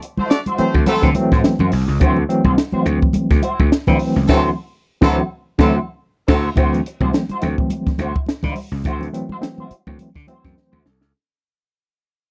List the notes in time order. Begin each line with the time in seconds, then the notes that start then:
0.02 muted clean electric guitar stroke, closed hi-hat
0.17 A3 E4 F#4 C5, muted slap bass stroke, high conga
0.28 A3 F#4 D5, muted clean electric guitar stroke, snare, closed hi-hat
0.46 E4 F#4 C5, closed hi-hat, muted conga, high conga
0.57 E3 F#3 A3 C4 F#4 C5, muted clean electric guitar stroke, muted slap bass stroke, closed hi-hat
0.74 D2, muted clean electric guitar stroke, kick
0.86 E3 F#3 A3 C4 E4 F#4 A4 C5, closed hi-hat, high conga
1.02 D3 E3 F#3 A3 C4, kick, snare, muted conga
1.15 E3 F#3 A3 C4, muted clean electric guitar stroke, closed hi-hat, high conga
1.32 A2 E4 F#4 C5, kick, snare
1.44 muted clean electric guitar stroke, snare, closed hi-hat
1.59 F#2 E4 F#4 C5, high conga, low conga
1.72 C2, muted clean electric guitar stroke, open hi-hat
1.88 C#2, muted clean electric guitar stroke, snare
2.00 D2 E3 F#3 A3 C4 E4 F#4 C5, kick, closed hi-hat, muted conga, low conga
2.16 muted clean electric guitar stroke, muted conga
2.29 E3 F#3 A3 C4, muted clean electric guitar stroke, closed hi-hat
2.45 C2 E4 F#4 C5, kick, high conga
2.57 muted clean electric guitar stroke, snare, closed hi-hat
2.72 E3 F#3 A3 C4 E4 F#4 C5, muted slap bass stroke, muted conga, high conga
2.86 D2, muted clean electric guitar stroke, closed hi-hat
3.02 muted clean electric guitar stroke, kick
3.13 muted clean electric guitar stroke, muted slap bass stroke, closed hi-hat, muted conga, high conga
3.30 D2, muted clean electric guitar stroke, kick, snare
3.42 E4 F#4 C5, closed hi-hat, high conga
3.60 D2, muted clean electric guitar stroke, kick
3.71 muted clean electric guitar stroke, snare, closed hi-hat
3.87 D3 E3 F#3 A3 C4 E4 F#4 C5, kick, snare, high conga, low conga
3.99 muted clean electric guitar stroke, open hi-hat
4.16 C#2, muted clean electric guitar stroke, snare
4.28 D2 E3 F#3 A3 C4 E4 F#4 A4 C5, kick, snare, crash
5.01 D2 E3 F#3 A3 C4 E4 F#4 A4 C5, kick, snare
5.58 D2 E3 F#3 A3 C4 E4 F#4 A4 C5, kick, snare
6.27 D2 F#3 E4 F#4 A4 C5, kick, snare, crash
6.56 D2 E3 F#3 A3 C4 E4 F#4 C5, kick, closed hi-hat, muted conga, low conga
6.73 muted clean electric guitar stroke, closed hi-hat, muted conga
6.86 muted clean electric guitar stroke, closed hi-hat
7.00 C2 E3 F#3 A3 C4 C5, kick, high conga
7.05 E4 F#4
7.13 muted clean electric guitar stroke, snare, closed hi-hat, muted conga
7.29 E4 F#4 C5, muted slap bass stroke, closed hi-hat, high conga
7.42 D2 E3 F#3 A3 C4, muted clean electric guitar stroke, closed hi-hat
7.58 muted clean electric guitar stroke, kick
7.70 muted clean electric guitar stroke, closed hi-hat, muted conga, high conga
7.87 muted slap bass stroke, muted clean electric guitar stroke, kick, snare
7.98 D2 E4 F#4 C5, closed hi-hat, high conga
8.16 muted clean electric guitar stroke, kick
8.26 muted clean electric guitar stroke, snare, closed hi-hat, muted conga
8.43 D3 E4 F#4 C5, kick, snare, muted conga, high conga, low conga
8.55 muted clean electric guitar stroke, open hi-hat, high conga
8.72 C#2, muted clean electric guitar stroke, snare
8.84 D2 E4 F#4, kick, closed hi-hat, muted conga, low conga
8.88 C5
9.00 E3 F#3 A3 C4, muted clean electric guitar stroke, closed hi-hat, muted conga
9.13 E3 F#3 A3 C4, closed hi-hat
9.17 muted clean electric guitar stroke
9.29 F#4 C5, muted slap bass stroke, high conga
9.34 E4
9.41 E3 F#3 A3 C4, muted clean electric guitar stroke, snare, closed hi-hat, muted conga
9.58 E4 F#4 C5, muted conga, high conga
9.71 muted slap bass stroke, muted clean electric guitar stroke, closed hi-hat
9.87 D2 E3 F#3 A3 C4, muted clean electric guitar stroke, kick
9.99 muted slap bass stroke, muted clean electric guitar stroke, closed hi-hat, high conga
10.14 D3, muted clean electric guitar stroke, kick, snare, muted conga
10.27 E3 F#3 A3 C4 E4 F#4 C5, closed hi-hat, high conga
10.44 F#2, muted clean electric guitar stroke, kick, snare
10.55 C5, muted clean electric guitar stroke, snare
10.72 D2 E4 F#4 C5, high conga, low conga
10.85 C2 A4, muted clean electric guitar stroke, snare, high conga
11.01 C#2, muted clean electric guitar stroke, snare